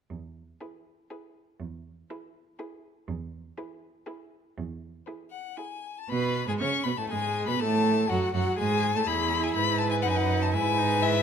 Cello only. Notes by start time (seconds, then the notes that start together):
0.10 E2
1.60 E2
3.08 E2
4.57 E2
6.09 B2
6.48 G#2
6.60 C#3
6.85 B2
6.97 A2
7.09 G#2
7.47 B2
7.59 A2
8.09 F#2
8.33 F#2
8.58 G#2
8.95 A2
9.07 E2
9.56 G#2
10.04 F#2
10.53 G#2